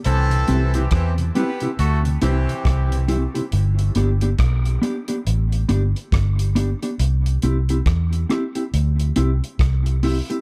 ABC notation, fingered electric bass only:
X:1
M:4/4
L:1/16
Q:"Swing 16ths" 1/4=69
K:Clyd
V:1 name="Fingered electric bass" clef=bass
C,,2 C,,2 E,,2 z2 D,,2 C,, z C,,3 z | G,,,2 G,,,2 B,,,2 z2 A,,,2 G,,, z G,,,3 z | C,,2 C,,2 E,,2 z2 D,,2 C,, z C,,3 z |]